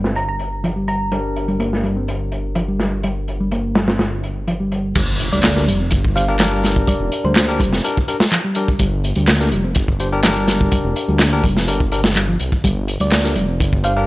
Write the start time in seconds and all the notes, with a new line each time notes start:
Already playing: G1 D4 G4 A#4
0.04 C4, snare
0.16 A#5, closed hi-hat
0.29 A#5
0.39 closed hi-hat
0.64 F3, closed hi-hat
0.76 G3
0.88 A#5, closed hi-hat
1.12 G3 D4 G4 A#4, closed hi-hat
1.36 closed hi-hat
1.48 G3, closed hi-hat
1.59 A#3, closed hi-hat
1.73 snare
1.83 G3, closed hi-hat
1.96 C4
2.08 closed hi-hat
2.32 closed hi-hat
2.55 F3, closed hi-hat
2.68 G3
2.80 snare, closed hi-hat
3.03 G3, closed hi-hat
3.28 closed hi-hat
3.40 G3
3.52 A#3, closed hi-hat
3.75 G3, snare, closed hi-hat
3.88 C4, snare, closed hi-hat
3.99 snare, closed hi-hat
4.24 closed hi-hat
4.47 F3, closed hi-hat
4.60 G3
4.72 closed hi-hat
4.95 G1 G3, kick, closed hi-hat, crash, tambourine, impact
5.08 tambourine
5.19 closed hi-hat, tambourine
5.32 D2 G3 D5, closed hi-hat, tambourine
5.43 A#3, snare, clap, closed hi-hat, tambourine
5.56 D4 G4 A#4, snare, tambourine
5.67 F1 G3, closed hi-hat, tambourine
5.80 C4, tambourine
5.91 G1, kick, closed hi-hat, tambourine
6.04 kick, tambourine
6.15 D4 G4 C5 F5, closed hi-hat, tambourine
6.28 D4 G4 A#4 F5, tambourine
6.39 F3 D4 G4 A#4, snare, clap, closed hi-hat, tambourine
6.52 G3, tambourine
6.63 snare, closed hi-hat, tambourine
6.76 kick, tambourine
6.87 F1 G3 D5, kick, closed hi-hat, tambourine
7.00 F1, tambourine
7.12 closed hi-hat, tambourine
7.24 D2 G3 C5, tambourine
7.36 A#3 C5, snare, clap, closed hi-hat, tambourine
7.49 D4 G4 A#4, tambourine
7.60 F1 G3, kick, closed hi-hat, tambourine
7.72 C4, snare, tambourine
7.84 D4 G4 A#4, closed hi-hat, tambourine
7.97 kick, tambourine
8.08 D4 G4 A#4, closed hi-hat, tambourine
8.20 snare, tambourine
8.32 F3, clap, closed hi-hat, tambourine
8.44 G3, tambourine
8.55 D4 G4 A#4, closed hi-hat, tambourine
8.68 kick, tambourine
8.79 G1 G3, kick, closed hi-hat, tambourine
8.93 tambourine
9.04 closed hi-hat, tambourine
9.16 D2 G3, closed hi-hat, tambourine
9.27 A#3, snare, clap, closed hi-hat, tambourine
9.40 D4 G4 A#4, snare, tambourine
9.52 F1 G3, closed hi-hat, tambourine
9.64 C4, tambourine
9.75 G1, kick, closed hi-hat, tambourine
9.88 kick, tambourine
10.00 D4 G4 C5, closed hi-hat, tambourine
10.12 D4 G4 A#4, tambourine
10.23 F3 D4 G4 A#4, snare, clap, closed hi-hat, tambourine
10.36 G3, tambourine
10.48 snare, closed hi-hat, tambourine
10.61 kick, tambourine
10.72 F1 G3, kick, closed hi-hat, tambourine
10.84 F1, tambourine
10.96 closed hi-hat, tambourine
11.08 D2 G3, tambourine
11.19 A#3, snare, clap, closed hi-hat, tambourine
11.32 D4 G4 A#4, tambourine
11.44 F1 G3, kick, closed hi-hat, tambourine
11.56 C4, snare, tambourine
11.68 G1 D4 G4 A#4, closed hi-hat, tambourine
11.80 kick, tambourine
11.92 D4 G4 A#4, closed hi-hat, tambourine
12.04 snare, tambourine
12.16 G3, clap, closed hi-hat, tambourine
12.28 F3, tambourine
12.40 C2, closed hi-hat, tambourine
12.52 kick, tambourine
12.64 G1 G3, kick, closed hi-hat, tambourine
12.76 tambourine
12.88 closed hi-hat, tambourine
13.00 D2 G3 D5, closed hi-hat, tambourine
13.12 A#3, snare, clap, closed hi-hat, tambourine
13.24 D4 G4 A#4, snare, tambourine
13.36 F1 G3, closed hi-hat, tambourine
13.48 C4, tambourine
13.60 G1, kick, closed hi-hat, tambourine
13.72 kick, tambourine
13.84 D4 G4 C5 F5, closed hi-hat, tambourine
13.96 D4 G4 A#4 F5, tambourine